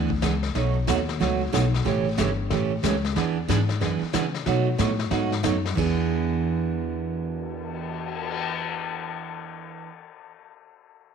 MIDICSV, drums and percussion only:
0, 0, Header, 1, 3, 480
1, 0, Start_track
1, 0, Tempo, 326975
1, 797, Time_signature, 4, 2, 24, 8
1, 16365, End_track
2, 0, Start_track
2, 0, Title_t, "Cymbal swell"
2, 8778, Note_on_c, 9, 59, 50
2, 12208, Note_off_c, 9, 59, 0
2, 16365, End_track
3, 0, Start_track
3, 0, Title_t, "Drums"
3, 149, Note_on_c, 9, 36, 66
3, 296, Note_off_c, 9, 36, 0
3, 327, Note_on_c, 9, 38, 78
3, 327, Note_on_c, 9, 44, 63
3, 329, Note_on_c, 9, 36, 27
3, 474, Note_off_c, 9, 38, 0
3, 474, Note_off_c, 9, 44, 0
3, 475, Note_off_c, 9, 36, 0
3, 628, Note_on_c, 9, 38, 40
3, 775, Note_off_c, 9, 38, 0
3, 806, Note_on_c, 9, 25, 50
3, 806, Note_on_c, 9, 38, 42
3, 811, Note_on_c, 9, 36, 23
3, 953, Note_off_c, 9, 38, 0
3, 957, Note_off_c, 9, 36, 0
3, 1290, Note_on_c, 9, 36, 17
3, 1291, Note_on_c, 9, 38, 74
3, 1291, Note_on_c, 9, 44, 65
3, 1436, Note_off_c, 9, 36, 0
3, 1437, Note_off_c, 9, 38, 0
3, 1437, Note_off_c, 9, 44, 0
3, 1599, Note_on_c, 9, 38, 42
3, 1746, Note_off_c, 9, 38, 0
3, 1772, Note_on_c, 9, 36, 26
3, 1781, Note_off_c, 9, 25, 0
3, 1781, Note_on_c, 9, 25, 54
3, 1781, Note_on_c, 9, 38, 50
3, 1919, Note_off_c, 9, 36, 0
3, 1927, Note_off_c, 9, 38, 0
3, 2250, Note_on_c, 9, 36, 22
3, 2259, Note_on_c, 9, 38, 78
3, 2259, Note_on_c, 9, 44, 62
3, 2397, Note_off_c, 9, 36, 0
3, 2406, Note_off_c, 9, 38, 0
3, 2406, Note_off_c, 9, 44, 0
3, 2559, Note_on_c, 9, 38, 39
3, 2706, Note_off_c, 9, 38, 0
3, 2724, Note_off_c, 9, 25, 0
3, 2724, Note_on_c, 9, 25, 50
3, 2724, Note_on_c, 9, 38, 41
3, 2726, Note_on_c, 9, 36, 26
3, 2871, Note_off_c, 9, 38, 0
3, 2873, Note_off_c, 9, 36, 0
3, 3204, Note_on_c, 9, 38, 73
3, 3204, Note_on_c, 9, 44, 62
3, 3205, Note_on_c, 9, 36, 26
3, 3351, Note_off_c, 9, 36, 0
3, 3351, Note_off_c, 9, 38, 0
3, 3351, Note_off_c, 9, 44, 0
3, 3677, Note_off_c, 9, 25, 0
3, 3677, Note_on_c, 9, 25, 50
3, 3677, Note_on_c, 9, 38, 53
3, 3682, Note_on_c, 9, 36, 23
3, 3824, Note_off_c, 9, 38, 0
3, 3829, Note_off_c, 9, 36, 0
3, 4164, Note_on_c, 9, 36, 22
3, 4164, Note_on_c, 9, 38, 77
3, 4164, Note_on_c, 9, 44, 68
3, 4310, Note_off_c, 9, 38, 0
3, 4310, Note_off_c, 9, 44, 0
3, 4311, Note_off_c, 9, 36, 0
3, 4471, Note_on_c, 9, 38, 40
3, 4617, Note_off_c, 9, 38, 0
3, 4640, Note_off_c, 9, 25, 0
3, 4640, Note_on_c, 9, 25, 45
3, 4640, Note_on_c, 9, 38, 47
3, 4643, Note_on_c, 9, 36, 19
3, 4787, Note_off_c, 9, 38, 0
3, 4790, Note_off_c, 9, 36, 0
3, 5123, Note_on_c, 9, 36, 20
3, 5133, Note_on_c, 9, 38, 69
3, 5133, Note_on_c, 9, 44, 55
3, 5270, Note_off_c, 9, 36, 0
3, 5279, Note_off_c, 9, 38, 0
3, 5279, Note_off_c, 9, 44, 0
3, 5417, Note_on_c, 9, 38, 41
3, 5564, Note_off_c, 9, 38, 0
3, 5598, Note_on_c, 9, 36, 20
3, 5600, Note_off_c, 9, 25, 0
3, 5600, Note_on_c, 9, 25, 54
3, 5600, Note_on_c, 9, 38, 52
3, 5745, Note_off_c, 9, 36, 0
3, 5747, Note_off_c, 9, 38, 0
3, 6072, Note_on_c, 9, 38, 77
3, 6072, Note_on_c, 9, 44, 70
3, 6075, Note_on_c, 9, 36, 22
3, 6219, Note_off_c, 9, 38, 0
3, 6219, Note_off_c, 9, 44, 0
3, 6222, Note_off_c, 9, 36, 0
3, 6377, Note_on_c, 9, 38, 40
3, 6524, Note_off_c, 9, 38, 0
3, 6546, Note_off_c, 9, 25, 0
3, 6546, Note_on_c, 9, 25, 50
3, 6546, Note_on_c, 9, 38, 43
3, 6552, Note_on_c, 9, 36, 24
3, 6693, Note_off_c, 9, 38, 0
3, 6699, Note_off_c, 9, 36, 0
3, 7031, Note_on_c, 9, 36, 23
3, 7031, Note_on_c, 9, 38, 70
3, 7031, Note_on_c, 9, 44, 63
3, 7178, Note_off_c, 9, 36, 0
3, 7178, Note_off_c, 9, 38, 0
3, 7178, Note_off_c, 9, 44, 0
3, 7330, Note_on_c, 9, 38, 43
3, 7477, Note_off_c, 9, 38, 0
3, 7502, Note_off_c, 9, 25, 0
3, 7502, Note_on_c, 9, 25, 51
3, 7502, Note_on_c, 9, 38, 51
3, 7507, Note_on_c, 9, 36, 20
3, 7649, Note_off_c, 9, 38, 0
3, 7654, Note_off_c, 9, 36, 0
3, 7811, Note_on_c, 9, 38, 37
3, 7958, Note_off_c, 9, 38, 0
3, 7983, Note_on_c, 9, 38, 73
3, 7983, Note_on_c, 9, 44, 66
3, 7991, Note_on_c, 9, 36, 22
3, 8130, Note_off_c, 9, 38, 0
3, 8130, Note_off_c, 9, 44, 0
3, 8138, Note_off_c, 9, 36, 0
3, 8301, Note_on_c, 9, 38, 40
3, 8448, Note_off_c, 9, 38, 0
3, 8476, Note_on_c, 9, 36, 53
3, 8479, Note_on_c, 9, 49, 63
3, 8623, Note_off_c, 9, 36, 0
3, 8626, Note_off_c, 9, 49, 0
3, 8838, Note_off_c, 9, 25, 0
3, 16365, End_track
0, 0, End_of_file